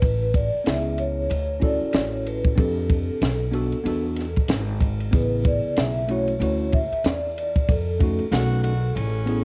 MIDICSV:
0, 0, Header, 1, 7, 480
1, 0, Start_track
1, 0, Key_signature, 3, "major"
1, 0, Tempo, 638298
1, 18, Time_signature, 4, 2, 24, 8
1, 7099, End_track
2, 0, Start_track
2, 0, Title_t, "Vibraphone"
2, 0, Program_c, 0, 11
2, 26, Note_on_c, 0, 71, 80
2, 263, Note_on_c, 0, 74, 93
2, 269, Note_off_c, 0, 71, 0
2, 507, Note_off_c, 0, 74, 0
2, 508, Note_on_c, 0, 76, 90
2, 747, Note_on_c, 0, 73, 100
2, 750, Note_off_c, 0, 76, 0
2, 1229, Note_on_c, 0, 74, 90
2, 1237, Note_off_c, 0, 73, 0
2, 1427, Note_off_c, 0, 74, 0
2, 1440, Note_on_c, 0, 74, 75
2, 1469, Note_on_c, 0, 73, 90
2, 1470, Note_off_c, 0, 74, 0
2, 1704, Note_on_c, 0, 71, 74
2, 1711, Note_off_c, 0, 73, 0
2, 1942, Note_on_c, 0, 69, 78
2, 1948, Note_off_c, 0, 71, 0
2, 3350, Note_off_c, 0, 69, 0
2, 3877, Note_on_c, 0, 71, 88
2, 4113, Note_on_c, 0, 74, 96
2, 4114, Note_off_c, 0, 71, 0
2, 4329, Note_off_c, 0, 74, 0
2, 4348, Note_on_c, 0, 76, 100
2, 4590, Note_off_c, 0, 76, 0
2, 4594, Note_on_c, 0, 73, 104
2, 5067, Note_on_c, 0, 76, 114
2, 5080, Note_off_c, 0, 73, 0
2, 5306, Note_on_c, 0, 74, 96
2, 5309, Note_off_c, 0, 76, 0
2, 5543, Note_off_c, 0, 74, 0
2, 5552, Note_on_c, 0, 74, 82
2, 5789, Note_on_c, 0, 69, 77
2, 5792, Note_off_c, 0, 74, 0
2, 7099, Note_off_c, 0, 69, 0
2, 7099, End_track
3, 0, Start_track
3, 0, Title_t, "Tenor saxophone"
3, 0, Program_c, 1, 66
3, 6253, Note_on_c, 1, 66, 102
3, 6479, Note_off_c, 1, 66, 0
3, 6488, Note_on_c, 1, 66, 92
3, 6737, Note_on_c, 1, 61, 77
3, 6748, Note_off_c, 1, 66, 0
3, 7099, Note_off_c, 1, 61, 0
3, 7099, End_track
4, 0, Start_track
4, 0, Title_t, "Tine electric piano"
4, 0, Program_c, 2, 4
4, 482, Note_on_c, 2, 59, 54
4, 493, Note_on_c, 2, 61, 51
4, 499, Note_on_c, 2, 64, 52
4, 507, Note_on_c, 2, 68, 66
4, 970, Note_off_c, 2, 59, 0
4, 975, Note_off_c, 2, 61, 0
4, 979, Note_off_c, 2, 64, 0
4, 982, Note_off_c, 2, 68, 0
4, 1202, Note_on_c, 2, 61, 74
4, 1213, Note_on_c, 2, 64, 63
4, 1218, Note_on_c, 2, 66, 62
4, 1229, Note_on_c, 2, 69, 78
4, 1892, Note_off_c, 2, 61, 0
4, 1897, Note_off_c, 2, 64, 0
4, 1900, Note_off_c, 2, 66, 0
4, 1905, Note_off_c, 2, 69, 0
4, 1922, Note_on_c, 2, 60, 69
4, 1933, Note_on_c, 2, 62, 58
4, 1940, Note_on_c, 2, 67, 60
4, 1949, Note_on_c, 2, 69, 71
4, 2410, Note_off_c, 2, 60, 0
4, 2416, Note_off_c, 2, 62, 0
4, 2419, Note_off_c, 2, 67, 0
4, 2424, Note_off_c, 2, 69, 0
4, 2642, Note_on_c, 2, 59, 69
4, 2649, Note_on_c, 2, 62, 70
4, 2659, Note_on_c, 2, 66, 76
4, 2669, Note_on_c, 2, 69, 83
4, 2833, Note_off_c, 2, 59, 0
4, 2836, Note_off_c, 2, 62, 0
4, 2841, Note_off_c, 2, 66, 0
4, 2846, Note_off_c, 2, 69, 0
4, 2887, Note_on_c, 2, 59, 78
4, 2898, Note_on_c, 2, 62, 76
4, 2906, Note_on_c, 2, 66, 72
4, 2916, Note_on_c, 2, 69, 90
4, 3190, Note_off_c, 2, 59, 0
4, 3196, Note_off_c, 2, 62, 0
4, 3200, Note_off_c, 2, 66, 0
4, 3205, Note_off_c, 2, 69, 0
4, 3844, Note_on_c, 2, 59, 67
4, 3851, Note_on_c, 2, 49, 54
4, 3861, Note_on_c, 2, 64, 59
4, 3869, Note_on_c, 2, 68, 71
4, 4533, Note_off_c, 2, 59, 0
4, 4536, Note_off_c, 2, 49, 0
4, 4541, Note_off_c, 2, 64, 0
4, 4545, Note_off_c, 2, 68, 0
4, 4572, Note_on_c, 2, 57, 74
4, 4580, Note_on_c, 2, 61, 67
4, 4589, Note_on_c, 2, 64, 67
4, 4596, Note_on_c, 2, 66, 85
4, 4757, Note_off_c, 2, 57, 0
4, 4762, Note_off_c, 2, 61, 0
4, 4766, Note_off_c, 2, 64, 0
4, 4770, Note_off_c, 2, 66, 0
4, 4813, Note_on_c, 2, 57, 70
4, 4818, Note_on_c, 2, 61, 62
4, 4825, Note_on_c, 2, 64, 64
4, 4836, Note_on_c, 2, 66, 78
4, 5113, Note_off_c, 2, 57, 0
4, 5116, Note_off_c, 2, 61, 0
4, 5119, Note_off_c, 2, 64, 0
4, 5125, Note_off_c, 2, 66, 0
4, 6011, Note_on_c, 2, 57, 76
4, 6020, Note_on_c, 2, 61, 67
4, 6031, Note_on_c, 2, 63, 67
4, 6037, Note_on_c, 2, 66, 77
4, 6197, Note_off_c, 2, 57, 0
4, 6202, Note_off_c, 2, 61, 0
4, 6207, Note_off_c, 2, 63, 0
4, 6210, Note_off_c, 2, 66, 0
4, 6251, Note_on_c, 2, 57, 61
4, 6258, Note_on_c, 2, 61, 57
4, 6265, Note_on_c, 2, 63, 62
4, 6278, Note_on_c, 2, 66, 64
4, 6552, Note_off_c, 2, 57, 0
4, 6556, Note_off_c, 2, 61, 0
4, 6559, Note_off_c, 2, 63, 0
4, 6566, Note_off_c, 2, 66, 0
4, 6962, Note_on_c, 2, 59, 77
4, 6968, Note_on_c, 2, 61, 74
4, 6980, Note_on_c, 2, 64, 67
4, 6986, Note_on_c, 2, 68, 81
4, 7099, Note_off_c, 2, 59, 0
4, 7099, Note_off_c, 2, 61, 0
4, 7099, Note_off_c, 2, 64, 0
4, 7099, Note_off_c, 2, 68, 0
4, 7099, End_track
5, 0, Start_track
5, 0, Title_t, "Upright bass"
5, 0, Program_c, 3, 32
5, 18, Note_on_c, 3, 33, 98
5, 383, Note_off_c, 3, 33, 0
5, 502, Note_on_c, 3, 37, 92
5, 956, Note_off_c, 3, 37, 0
5, 976, Note_on_c, 3, 38, 97
5, 1342, Note_off_c, 3, 38, 0
5, 1459, Note_on_c, 3, 33, 85
5, 1915, Note_off_c, 3, 33, 0
5, 1939, Note_on_c, 3, 41, 108
5, 2304, Note_off_c, 3, 41, 0
5, 2418, Note_on_c, 3, 35, 110
5, 2783, Note_off_c, 3, 35, 0
5, 2899, Note_on_c, 3, 40, 103
5, 3264, Note_off_c, 3, 40, 0
5, 3375, Note_on_c, 3, 32, 100
5, 3832, Note_off_c, 3, 32, 0
5, 3858, Note_on_c, 3, 33, 106
5, 4223, Note_off_c, 3, 33, 0
5, 4337, Note_on_c, 3, 35, 92
5, 4793, Note_off_c, 3, 35, 0
5, 4814, Note_on_c, 3, 38, 110
5, 5181, Note_off_c, 3, 38, 0
5, 5295, Note_on_c, 3, 40, 86
5, 5752, Note_off_c, 3, 40, 0
5, 5779, Note_on_c, 3, 41, 102
5, 6144, Note_off_c, 3, 41, 0
5, 6253, Note_on_c, 3, 35, 110
5, 6712, Note_off_c, 3, 35, 0
5, 6738, Note_on_c, 3, 33, 96
5, 7099, Note_off_c, 3, 33, 0
5, 7099, End_track
6, 0, Start_track
6, 0, Title_t, "Muted upright bass strokes"
6, 407, Note_on_c, 9, 29, 49
6, 483, Note_off_c, 9, 29, 0
6, 1366, Note_on_c, 9, 29, 50
6, 1442, Note_off_c, 9, 29, 0
6, 2324, Note_on_c, 9, 29, 46
6, 2400, Note_off_c, 9, 29, 0
6, 2802, Note_on_c, 9, 29, 46
6, 2877, Note_off_c, 9, 29, 0
6, 3287, Note_on_c, 9, 29, 48
6, 3362, Note_off_c, 9, 29, 0
6, 4243, Note_on_c, 9, 29, 47
6, 4318, Note_off_c, 9, 29, 0
6, 5201, Note_on_c, 9, 29, 48
6, 5276, Note_off_c, 9, 29, 0
6, 6166, Note_on_c, 9, 29, 49
6, 6241, Note_off_c, 9, 29, 0
6, 7099, End_track
7, 0, Start_track
7, 0, Title_t, "Drums"
7, 14, Note_on_c, 9, 51, 82
7, 17, Note_on_c, 9, 36, 103
7, 89, Note_off_c, 9, 51, 0
7, 92, Note_off_c, 9, 36, 0
7, 257, Note_on_c, 9, 36, 92
7, 258, Note_on_c, 9, 51, 59
7, 332, Note_off_c, 9, 36, 0
7, 333, Note_off_c, 9, 51, 0
7, 496, Note_on_c, 9, 44, 48
7, 496, Note_on_c, 9, 51, 68
7, 505, Note_on_c, 9, 38, 98
7, 571, Note_off_c, 9, 44, 0
7, 571, Note_off_c, 9, 51, 0
7, 580, Note_off_c, 9, 38, 0
7, 736, Note_on_c, 9, 51, 56
7, 811, Note_off_c, 9, 51, 0
7, 983, Note_on_c, 9, 51, 71
7, 1059, Note_off_c, 9, 51, 0
7, 1215, Note_on_c, 9, 51, 48
7, 1222, Note_on_c, 9, 36, 87
7, 1290, Note_off_c, 9, 51, 0
7, 1297, Note_off_c, 9, 36, 0
7, 1452, Note_on_c, 9, 44, 50
7, 1452, Note_on_c, 9, 51, 73
7, 1465, Note_on_c, 9, 38, 116
7, 1527, Note_off_c, 9, 44, 0
7, 1527, Note_off_c, 9, 51, 0
7, 1540, Note_off_c, 9, 38, 0
7, 1705, Note_on_c, 9, 51, 57
7, 1780, Note_off_c, 9, 51, 0
7, 1841, Note_on_c, 9, 36, 93
7, 1916, Note_off_c, 9, 36, 0
7, 1936, Note_on_c, 9, 51, 86
7, 1939, Note_on_c, 9, 36, 109
7, 2012, Note_off_c, 9, 51, 0
7, 2014, Note_off_c, 9, 36, 0
7, 2178, Note_on_c, 9, 36, 96
7, 2180, Note_on_c, 9, 51, 60
7, 2254, Note_off_c, 9, 36, 0
7, 2255, Note_off_c, 9, 51, 0
7, 2418, Note_on_c, 9, 44, 50
7, 2418, Note_on_c, 9, 51, 72
7, 2427, Note_on_c, 9, 38, 102
7, 2493, Note_off_c, 9, 44, 0
7, 2493, Note_off_c, 9, 51, 0
7, 2503, Note_off_c, 9, 38, 0
7, 2656, Note_on_c, 9, 51, 57
7, 2731, Note_off_c, 9, 51, 0
7, 2799, Note_on_c, 9, 51, 40
7, 2874, Note_off_c, 9, 51, 0
7, 2902, Note_on_c, 9, 51, 74
7, 2977, Note_off_c, 9, 51, 0
7, 3132, Note_on_c, 9, 51, 54
7, 3153, Note_on_c, 9, 38, 31
7, 3207, Note_off_c, 9, 51, 0
7, 3228, Note_off_c, 9, 38, 0
7, 3282, Note_on_c, 9, 51, 39
7, 3288, Note_on_c, 9, 36, 79
7, 3357, Note_off_c, 9, 51, 0
7, 3363, Note_off_c, 9, 36, 0
7, 3371, Note_on_c, 9, 44, 55
7, 3371, Note_on_c, 9, 51, 71
7, 3384, Note_on_c, 9, 38, 107
7, 3446, Note_off_c, 9, 44, 0
7, 3446, Note_off_c, 9, 51, 0
7, 3459, Note_off_c, 9, 38, 0
7, 3614, Note_on_c, 9, 36, 85
7, 3624, Note_on_c, 9, 51, 57
7, 3689, Note_off_c, 9, 36, 0
7, 3699, Note_off_c, 9, 51, 0
7, 3762, Note_on_c, 9, 51, 42
7, 3837, Note_off_c, 9, 51, 0
7, 3855, Note_on_c, 9, 51, 88
7, 3858, Note_on_c, 9, 36, 105
7, 3931, Note_off_c, 9, 51, 0
7, 3933, Note_off_c, 9, 36, 0
7, 4098, Note_on_c, 9, 36, 100
7, 4098, Note_on_c, 9, 51, 55
7, 4173, Note_off_c, 9, 36, 0
7, 4173, Note_off_c, 9, 51, 0
7, 4336, Note_on_c, 9, 44, 50
7, 4336, Note_on_c, 9, 51, 72
7, 4345, Note_on_c, 9, 38, 111
7, 4411, Note_off_c, 9, 44, 0
7, 4411, Note_off_c, 9, 51, 0
7, 4420, Note_off_c, 9, 38, 0
7, 4577, Note_on_c, 9, 51, 52
7, 4652, Note_off_c, 9, 51, 0
7, 4720, Note_on_c, 9, 51, 41
7, 4795, Note_off_c, 9, 51, 0
7, 4824, Note_on_c, 9, 51, 73
7, 4899, Note_off_c, 9, 51, 0
7, 5056, Note_on_c, 9, 51, 53
7, 5062, Note_on_c, 9, 36, 82
7, 5131, Note_off_c, 9, 51, 0
7, 5137, Note_off_c, 9, 36, 0
7, 5206, Note_on_c, 9, 51, 43
7, 5281, Note_off_c, 9, 51, 0
7, 5295, Note_on_c, 9, 44, 53
7, 5295, Note_on_c, 9, 51, 70
7, 5308, Note_on_c, 9, 38, 120
7, 5371, Note_off_c, 9, 44, 0
7, 5371, Note_off_c, 9, 51, 0
7, 5383, Note_off_c, 9, 38, 0
7, 5547, Note_on_c, 9, 51, 60
7, 5622, Note_off_c, 9, 51, 0
7, 5682, Note_on_c, 9, 36, 88
7, 5684, Note_on_c, 9, 51, 41
7, 5757, Note_off_c, 9, 36, 0
7, 5760, Note_off_c, 9, 51, 0
7, 5778, Note_on_c, 9, 51, 77
7, 5779, Note_on_c, 9, 36, 107
7, 5854, Note_off_c, 9, 36, 0
7, 5854, Note_off_c, 9, 51, 0
7, 6018, Note_on_c, 9, 36, 92
7, 6019, Note_on_c, 9, 51, 56
7, 6094, Note_off_c, 9, 36, 0
7, 6094, Note_off_c, 9, 51, 0
7, 6155, Note_on_c, 9, 51, 34
7, 6230, Note_off_c, 9, 51, 0
7, 6257, Note_on_c, 9, 44, 58
7, 6257, Note_on_c, 9, 51, 78
7, 6266, Note_on_c, 9, 38, 91
7, 6332, Note_off_c, 9, 44, 0
7, 6332, Note_off_c, 9, 51, 0
7, 6341, Note_off_c, 9, 38, 0
7, 6495, Note_on_c, 9, 51, 61
7, 6570, Note_off_c, 9, 51, 0
7, 6743, Note_on_c, 9, 51, 66
7, 6818, Note_off_c, 9, 51, 0
7, 6971, Note_on_c, 9, 51, 53
7, 7046, Note_off_c, 9, 51, 0
7, 7099, End_track
0, 0, End_of_file